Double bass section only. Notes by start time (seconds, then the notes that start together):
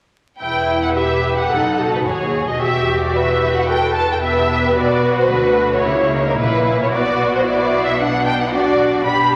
0.43 E1
1.52 F#1
2.06 D#2
2.60 E1
4.78 B1
5.32 D2
5.86 C#2
6.39 A#1
6.93 B1
9.08 B1